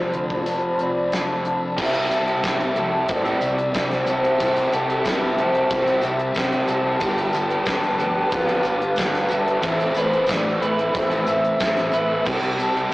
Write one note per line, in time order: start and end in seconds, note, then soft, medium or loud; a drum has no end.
0.00 0.45 F2 medium
0.00 1.77 F2 medium
0.00 0.14 C3 medium
0.00 1.75 C3 medium
0.00 0.11 F3 medium
0.00 0.45 F3 medium
0.00 1.77 F3 medium
0.00 1.78 A3 medium
0.00 0.12 C4 medium
0.00 1.78 C4 medium
0.00 0.46 D4 medium
0.00 1.73 F4 medium
0.00 1.79 F4 medium
0.00 0.13 A4 medium
0.00 0.80 C5 medium
0.00 1.73 D5 medium
0.00 1.73 A5 medium
0.00 1.75 B5 medium
0.13 0.35 D2 medium
0.13 0.79 C3 medium
0.13 0.77 F3 medium
0.13 0.78 C4 medium
0.13 closed hi-hat medium
0.30 kick medium
0.46 0.90 F1 medium
0.46 1.77 F3 medium
0.46 closed hi-hat loud
0.78 1.11 C3 medium
0.78 1.12 F3 medium
0.78 1.78 C4 medium
0.78 1.41 D5 loud
0.78 closed hi-hat medium
1.11 1.55 F1 medium
1.11 1.75 F2 medium
1.11 1.76 C3 medium
1.11 1.76 F3 medium
1.11 1.78 A4 medium
1.11 snare loud
1.11 closed hi-hat medium
1.45 1.78 D4 medium
1.45 closed hi-hat medium
1.76 2.31 C2 loud
1.76 2.42 C3 loud
1.76 2.09 C3 medium
1.76 2.43 E3 medium
1.76 2.10 G3 loud
1.76 3.41 G3 medium
1.76 2.29 G3 loud
1.76 2.12 C4 loud
1.76 2.28 E4 loud
1.76 9.60 G4 medium
1.76 2.27 G4 loud
1.76 6.98 E5 medium
1.76 6.98 G5 loud
1.76 9.60 A5 medium
1.76 kick loud
1.76 crash loud
1.76 tambourine medium
1.81 2.41 E5 loud
1.95 closed hi-hat soft
2.09 2.41 C3 medium
2.09 2.42 G3 medium
2.09 2.44 C4 medium
2.09 2.76 A4 medium
2.09 closed hi-hat medium
2.09 tambourine medium
2.27 2.44 G3 medium
2.27 2.44 E4 medium
2.27 2.45 G4 medium
2.27 closed hi-hat soft
2.42 2.70 C2 medium
2.42 2.75 C3 loud
2.42 3.74 C3 medium
2.42 2.61 E3 loud
2.42 2.60 G3 loud
2.42 2.61 G3 medium
2.42 2.57 C4 loud
2.42 4.07 E4 medium
2.42 2.60 E4 loud
2.42 2.60 G4 loud
2.42 kick loud
2.42 snare loud
2.42 closed hi-hat loud
2.42 tambourine medium
2.46 3.12 E5 loud
2.58 2.75 G3 medium
2.58 2.76 C4 medium
2.58 muted overdriven electric guitar stroke medium
2.58 closed hi-hat soft
2.75 3.03 C2 medium
2.75 3.58 E3 medium
2.75 3.27 G3 medium
2.75 3.26 E4 medium
2.75 3.25 G4 medium
2.75 4.07 A4 medium
2.75 muted distorted electric guitar stroke soft
2.75 closed hi-hat medium
2.75 tambourine soft
3.09 3.35 A2 loud
3.09 3.73 C4 medium
3.09 4.09 D5 loud
3.09 kick loud
3.09 closed hi-hat loud
3.09 tambourine soft
3.24 3.40 G3 medium
3.24 3.58 G3 medium
3.24 3.40 C4 medium
3.24 3.57 E4 medium
3.24 3.58 G4 medium
3.24 closed hi-hat soft
3.39 3.68 C2 loud
3.39 3.72 C3 medium
3.39 3.74 G3 medium
3.39 4.39 G3 medium
3.39 3.74 C4 medium
3.39 closed hi-hat medium
3.39 tambourine medium
3.58 muted overdriven electric guitar stroke medium
3.58 closed hi-hat medium
3.73 4.01 C2 loud
3.73 4.05 C3 medium
3.73 4.39 C3 medium
3.73 4.06 E3 medium
3.73 3.91 G3 medium
3.73 4.08 G3 loud
3.73 5.38 C4 medium
3.73 3.88 C4 loud
3.73 4.08 E4 loud
3.73 4.09 G4 medium
3.73 kick loud
3.73 snare loud
3.73 closed hi-hat loud
3.73 tambourine medium
3.89 4.07 G3 medium
3.89 4.07 C4 medium
3.89 snare soft
3.89 closed hi-hat soft
4.06 4.33 C2 loud
4.06 4.37 C3 medium
4.06 4.41 E3 medium
4.06 4.24 G3 medium
4.06 4.26 G3 medium
4.06 4.21 C4 medium
4.06 4.24 E4 medium
4.06 4.23 G4 medium
4.06 4.72 A4 medium
4.06 4.40 C5 loud
4.06 closed hi-hat medium
4.06 tambourine medium
4.22 4.40 G3 medium
4.22 4.42 G3 medium
4.22 4.39 C4 medium
4.22 4.42 E4 medium
4.22 4.43 G4 medium
4.22 closed hi-hat soft
4.39 4.67 C2 loud
4.39 4.69 C3 medium
4.39 5.04 C3 medium
4.39 5.05 E3 loud
4.39 6.02 G3 medium
4.39 4.72 G3 medium
4.39 4.92 G3 loud
4.39 4.72 C4 loud
4.39 4.74 C5 loud
4.39 kick loud
4.39 closed hi-hat loud
4.39 tambourine medium
4.43 4.90 E4 loud
4.43 4.89 G4 loud
4.57 closed hi-hat medium
4.71 4.99 C2 medium
4.71 5.03 C3 medium
4.71 5.05 G3 medium
4.71 5.05 C4 medium
4.71 5.37 A4 medium
4.71 5.08 A4 medium
4.71 closed hi-hat medium
4.71 tambourine medium
4.89 5.06 G3 medium
4.89 5.06 E4 medium
4.89 5.07 G4 medium
4.89 closed hi-hat medium
5.04 5.32 C2 loud
5.04 5.36 C3 loud
5.04 5.54 C3 medium
5.04 5.22 E3 loud
5.04 5.23 G3 loud
5.04 5.19 C4 loud
5.04 6.69 E4 medium
5.04 5.22 E4 loud
5.04 5.22 G4 loud
5.04 5.42 B4 loud
5.04 kick loud
5.04 snare loud
5.04 closed hi-hat loud
5.04 tambourine loud
5.21 5.37 G3 medium
5.21 5.37 C4 medium
5.21 muted overdriven electric guitar stroke medium
5.37 5.65 C2 loud
5.37 6.20 E3 medium
5.37 5.88 G3 medium
5.37 5.87 E4 medium
5.37 5.86 G4 medium
5.37 6.68 A4 medium
5.37 6.05 C5 medium
5.37 muted distorted electric guitar stroke soft
5.37 closed hi-hat medium
5.37 tambourine soft
5.55 closed hi-hat soft
5.70 5.97 C2 medium
5.70 6.35 C4 medium
5.70 kick loud
5.70 closed hi-hat loud
5.70 tambourine soft
5.85 6.01 G3 medium
5.85 6.02 C4 medium
5.85 6.20 E4 medium
5.85 6.19 G4 medium
5.85 closed hi-hat soft
5.90 6.20 G3 medium
6.01 6.30 C2 loud
6.01 6.31 C3 medium
6.01 6.32 G3 medium
6.01 7.00 G3 medium
6.01 6.33 C4 medium
6.01 6.69 E5 medium
6.01 closed hi-hat medium
6.01 tambourine medium
6.19 muted overdriven electric guitar stroke medium
6.19 closed hi-hat soft
6.32 6.62 C2 medium
6.32 6.65 C3 medium
6.32 6.99 C3 medium
6.32 6.50 G3 medium
6.32 6.48 C4 medium
6.32 kick loud
6.32 tambourine loud
6.36 6.67 E3 loud
6.36 6.67 G3 loud
6.36 7.02 C4 medium
6.36 6.69 E4 loud
6.36 6.69 G4 loud
6.36 snare loud
6.36 closed hi-hat loud
6.50 6.66 G3 medium
6.50 6.67 C4 medium
6.50 closed hi-hat medium
6.66 6.96 C2 loud
6.66 6.98 C3 medium
6.66 6.99 E3 medium
6.66 6.83 G3 medium
6.66 6.86 G3 medium
6.66 6.82 C4 medium
6.66 7.04 A4 medium
6.66 closed hi-hat medium
6.66 tambourine medium
6.70 6.85 E4 medium
6.70 6.83 G4 medium
6.83 6.99 G3 medium
6.83 6.98 C4 medium
6.83 7.00 E4 medium
6.83 6.99 G4 medium
6.87 7.01 G3 medium
6.99 7.54 G1 loud
6.99 7.31 G2 loud
6.99 7.65 G2 medium
6.99 7.33 D3 loud
6.99 7.65 D3 loud
6.99 7.34 G3 loud
6.99 8.63 G3 medium
6.99 7.51 G3 loud
6.99 7.51 B3 loud
6.99 9.62 B4 medium
6.99 7.64 G5 medium
6.99 9.62 D6 loud
6.99 kick loud
6.99 closed hi-hat loud
6.99 tambourine medium
7.03 7.49 D4 medium
7.03 7.48 G4 loud
7.18 closed hi-hat medium
7.33 7.64 G2 medium
7.33 7.65 D3 medium
7.33 7.66 G3 medium
7.33 7.99 A4 medium
7.33 closed hi-hat medium
7.33 tambourine medium
7.49 7.66 G3 medium
7.49 7.67 B3 medium
7.49 7.67 D4 medium
7.49 7.67 G4 medium
7.49 closed hi-hat soft
7.65 7.93 G1 medium
7.65 7.97 G2 loud
7.65 8.16 G2 loud
7.65 7.82 D3 loud
7.65 8.16 D3 loud
7.65 7.80 G3 loud
7.65 7.82 G3 loud
7.65 7.82 B3 loud
7.65 9.31 D4 medium
7.65 7.81 D4 loud
7.65 7.81 G4 loud
7.65 8.34 G5 loud
7.65 kick loud
7.65 snare loud
7.65 closed hi-hat medium
7.65 tambourine loud
7.82 7.98 D3 medium
7.82 7.98 G3 medium
7.82 muted overdriven electric guitar stroke medium
7.82 closed hi-hat soft
7.97 8.26 G1 medium
7.97 8.47 G3 medium
7.97 8.46 B3 medium
7.97 8.46 D4 medium
7.97 8.45 G4 medium
7.97 9.30 A4 medium
7.97 muted distorted electric guitar stroke medium
7.97 closed hi-hat medium
7.97 tambourine soft
8.30 8.59 F2 loud
8.30 8.96 B3 medium
8.30 9.34 F5 loud
8.30 kick loud
8.30 closed hi-hat loud
8.30 tambourine soft
8.46 8.64 D3 medium
8.46 8.65 G3 medium
8.46 8.80 G3 medium
8.46 8.79 B3 medium
8.46 8.80 D4 medium
8.46 8.79 G4 medium
8.46 closed hi-hat soft
8.63 8.92 G1 medium
8.63 8.94 G2 medium
8.63 8.96 D3 medium
8.63 9.63 G3 medium
8.63 8.96 G3 medium
8.63 closed hi-hat medium
8.63 tambourine medium
8.80 muted overdriven electric guitar stroke medium
8.80 closed hi-hat medium
8.96 9.25 G1 medium
8.96 9.27 G2 medium
8.96 9.61 G2 medium
8.96 9.13 D3 loud
8.96 9.61 D3 loud
8.96 9.11 G3 medium
8.96 9.27 G3 loud
8.96 9.63 B3 medium
8.96 9.28 B3 loud
8.96 9.29 D4 loud
8.96 9.30 G4 loud
8.96 kick loud
8.96 snare loud
8.96 closed hi-hat loud
8.96 tambourine loud
9.13 9.29 D3 medium
9.13 9.30 G3 medium
9.13 snare soft
9.13 closed hi-hat medium
9.28 9.58 G1 medium
9.28 9.61 G2 medium
9.28 9.46 D3 medium
9.28 9.46 G3 medium
9.28 9.44 G3 medium
9.28 9.46 B3 medium
9.28 9.45 D4 medium
9.28 9.43 G4 medium
9.28 9.96 A4 medium
9.28 closed hi-hat medium
9.28 tambourine medium
9.33 9.64 E5 loud
9.44 9.60 D3 medium
9.44 9.61 G3 medium
9.44 9.62 G3 medium
9.44 9.62 B3 medium
9.44 9.61 D4 medium
9.44 9.60 G4 medium
9.44 closed hi-hat soft
9.61 9.90 A1 loud
9.61 9.93 A2 medium
9.61 10.27 A2 loud
9.61 9.95 E3 loud
9.61 10.28 E3 medium
9.61 9.96 A3 loud
9.61 10.13 C4 loud
9.61 10.94 C4 medium
9.61 10.13 E4 loud
9.61 12.24 A4 medium
9.61 10.10 A4 loud
9.61 10.00 E5 loud
9.61 12.24 B5 medium
9.61 12.24 E6 loud
9.61 kick loud
9.61 closed hi-hat loud
9.61 tambourine medium
9.80 closed hi-hat soft
9.94 10.23 A1 medium
9.94 10.26 A2 medium
9.94 10.28 E3 medium
9.94 10.29 A3 medium
9.94 10.61 B4 medium
9.94 10.30 C5 loud
9.94 closed hi-hat medium
9.94 tambourine medium
10.11 10.29 C4 medium
10.11 10.29 E4 medium
10.11 10.30 A4 medium
10.11 closed hi-hat medium
10.26 10.56 A1 medium
10.26 10.59 A2 medium
10.26 10.78 A2 loud
10.26 10.45 E3 loud
10.26 10.43 A3 loud
10.26 10.45 C4 medium
10.26 12.91 E4 medium
10.26 10.44 E4 loud
10.26 10.44 A4 loud
10.26 kick loud
10.26 closed hi-hat loud
10.26 tambourine loud
10.31 10.65 D5 loud
10.31 snare loud
10.43 10.60 E3 medium
10.43 10.60 A3 medium
10.43 muted overdriven electric guitar stroke medium
10.60 10.89 A1 medium
10.60 11.44 E3 medium
10.60 11.12 C4 medium
10.60 11.11 E4 medium
10.60 11.10 A4 medium
10.60 11.92 B4 medium
10.60 11.27 E5 loud
10.60 muted distorted electric guitar stroke medium
10.60 closed hi-hat medium
10.79 closed hi-hat soft
10.94 11.21 A1 loud
10.94 11.28 C4 medium
10.94 kick loud
10.94 closed hi-hat loud
10.94 tambourine soft
11.10 11.27 E3 medium
11.10 11.27 A3 medium
11.10 11.44 C4 medium
11.10 11.44 E4 medium
11.10 11.43 A4 medium
11.10 closed hi-hat soft
11.25 11.54 A1 medium
11.25 11.57 A2 medium
11.25 11.59 E3 medium
11.25 11.61 A3 medium
11.25 11.60 C4 medium
11.25 12.27 E5 loud
11.25 closed hi-hat medium
11.25 tambourine medium
11.43 muted overdriven electric guitar stroke medium
11.43 closed hi-hat soft
11.58 11.87 A1 medium
11.58 11.91 A2 medium
11.58 12.24 A2 medium
11.58 11.78 E3 medium
11.58 11.92 E3 loud
11.58 11.75 A3 loud
11.58 12.94 C4 medium
11.58 11.93 C4 loud
11.58 11.94 E4 loud
11.58 11.95 A4 loud
11.58 kick loud
11.58 snare loud
11.58 closed hi-hat loud
11.58 tambourine loud
11.76 11.93 E3 medium
11.76 11.94 A3 medium
11.76 snare soft
11.76 closed hi-hat medium
11.92 12.20 A1 loud
11.92 12.24 A2 medium
11.92 12.26 E3 medium
11.92 12.10 E3 medium
11.92 12.08 A3 medium
11.92 12.11 C4 medium
11.92 12.09 E4 medium
11.92 12.08 A4 medium
11.92 12.26 B4 medium
11.92 closed hi-hat medium
11.92 tambourine medium
12.08 12.24 E3 medium
12.08 12.26 A3 medium
12.08 12.26 C4 medium
12.08 12.27 E4 medium
12.08 12.27 A4 medium
12.24 12.79 C2 loud
12.24 12.57 C3 medium
12.24 12.91 C3 medium
12.24 12.58 G3 medium
12.24 12.92 G3 medium
12.24 12.94 G3 medium
12.24 12.59 C4 loud
12.24 12.76 C4 loud
12.24 12.75 E4 loud
12.24 12.94 G4 medium
12.24 12.74 G4 loud
12.24 12.93 A5 loud
12.24 12.94 A5 medium
12.24 12.94 E6 loud
12.24 kick loud
12.24 tambourine medium
12.24 crash loud
12.43 closed hi-hat soft
12.58 12.89 C3 medium
12.58 12.90 G3 loud
12.58 12.92 C4 medium
12.58 12.94 A4 medium
12.58 closed hi-hat medium
12.58 tambourine medium
12.74 12.92 C4 medium
12.74 12.93 E4 medium
12.74 12.94 G4 medium
12.74 closed hi-hat medium
12.90 12.94 C3 loud